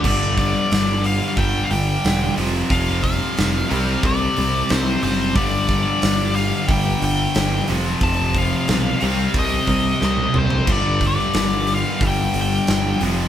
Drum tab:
CC |x---------------|----------------|----------------|----------------|
HH |--o-o-o-o-o-o-o-|o-o-o-o-o-o-o-o-|o-o-o-o-o-o-o-o-|o-o-o-o-o-o-----|
SD |--o-o-------o---|--o-o-------o---|--o-o-------o---|----o-------o---|
T1 |----------------|----------------|----------------|-------------o--|
T2 |----------------|----------------|----------------|--------------o-|
FT |----------------|----------------|----------------|---------------o|
BD |o-o-----o-------|o-o-----o-------|o-o-----o-------|o-o-----o-o-----|

CC |x---------------|
HH |--o-o-o-o-o-o-o-|
SD |--ooo-------o---|
T1 |----------------|
T2 |----------------|
FT |----------------|
BD |o-o-----o-------|